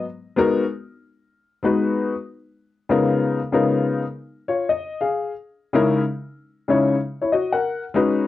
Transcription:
upright piano
0.36 G#3 B3 D#4 F#4 A#4
1.63 G#3 B3 D#4 F#4 B4
2.89 C#3 G#3 B3 D#4 F4 A#4
3.52 C#3 G#3 B3 D#4 F4 A#4
4.48 F4 C#5
4.69 D#5
5.01 G#4 F5
5.73 C#3 G#3 C#4 D#4 E4 A#4
6.68 C#3 G#3 C#4 D#4 E4 C#5
7.22 E4 C#5
7.32 F#4 D#5
7.53 A#4 F#5
7.94 G#3 C#4 D#4 F#4 B4

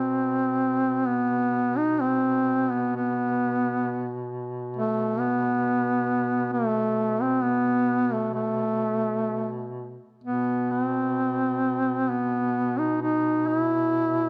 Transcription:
duduk
Already playing: B2 C4
1.07 B3
1.78 D#4
2.01 C4
2.71 B3
2.96 B3
4.77 A3
5.19 B3
6.53 A3
7.22 C4
7.43 B3
8.13 A3
8.34 A3
10.23 B2 B3
10.71 C4
12.09 B3
12.79 D#4
13.02 D#4
13.47 E4

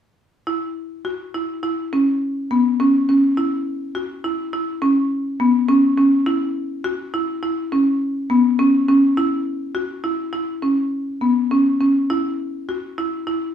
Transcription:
marimba
0.47 E4
1.05 F#4
1.34 E4
1.63 E4
1.93 C#4
2.51 B3
2.80 C#4
3.09 C#4
3.37 E4
3.95 F#4
4.24 E4
4.53 E4
4.82 C#4
5.40 B3
5.69 C#4
5.98 C#4
6.26 E4
6.84 F#4
7.14 E4
7.43 E4
7.72 C#4
8.30 B3
8.59 C#4
8.89 C#4
9.17 E4
9.75 F#4
10.04 E4
10.33 E4
10.62 C#4
11.21 B3
11.51 C#4
11.81 C#4
12.10 E4
12.69 F#4
12.98 E4
13.27 E4

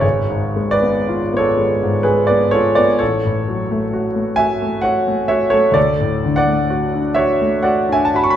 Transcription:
grand piano
0.00 G#1 G#4 C#5
0.30 G#2
0.56 G#3
0.71 B4 D5
0.82 B3
1.09 F4
1.33 B3 C#5
1.38 A4
1.57 G#3
1.83 G#2
2.03 G#3 G#4 B4
2.27 B3 B4 D5
2.51 F4 A4 C#5
2.75 B3 B4 D5
2.99 A1 A4 C#5
3.25 A2
3.48 F#3
3.71 A3
3.93 F#4
4.16 A3
4.36 F#4 E5 G#5
4.62 A3
4.81 F#4 C#5 F#5
5.08 A3
5.28 F#4 C#5 E5
5.50 A3 A4 C#5
5.72 D2 A4 D5
6.00 A2
6.25 D3
6.36 D5 F#5
6.47 A3
6.70 F#4
6.94 D4
7.15 F#4 C#5 E5
7.41 A3
7.63 F#4 D5 F#5
7.89 D4 G#5
7.93 E5
8.05 A5
8.14 F#4 B5
8.24 C#6
8.30 B5

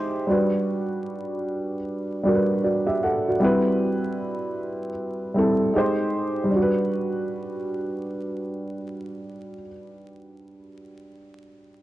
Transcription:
upright piano
Already playing: G#3 D#4 G4 C5 E5
0.27 G3 D4 F#4
0.32 B4
2.23 G3 D4 F#4
2.28 A#4
2.35 B4
2.64 F#4 D5
2.87 G4 E5
3.03 A4 F#5
3.28 F#4 D5
3.40 G3 C4 E4
3.44 B4
5.34 G3 C4 E4
5.39 A4
5.73 G#3 D#4 G4
5.78 C5
6.44 G3
6.50 D4
6.56 F#4
6.62 B4

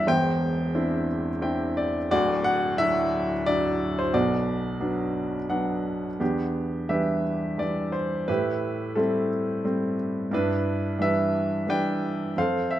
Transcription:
grand piano
0.07 E1 E2 C5 G5
0.74 C4 D4 E4
1.42 C4 D4 E4 G5
1.77 D5
2.11 D1 D2 F#4 D5
2.44 F#5
2.77 F#3 D4 E4 E5
3.46 F#3 D4 E4 D5
3.99 C5
4.13 B1 B2 F#4 D5
4.80 F#3 B3 D4
5.50 F#3 B3 D4 F#5
6.19 E2 B3 D4 G4
6.89 E3 G3 D4 G4 B4 E5
7.58 E3 G3 D4 D5
7.92 C5
8.28 A2 E4 G4 B4
8.95 G3 A3 C4 E4 A4
9.64 G3 A3 C4
10.31 G2 D4 E4 B4
10.98 E3 G3 D4 B4 E5
11.67 E3 G3 D4 B4 D5 G5
12.36 F2 A4 C5 F5
12.71 E5

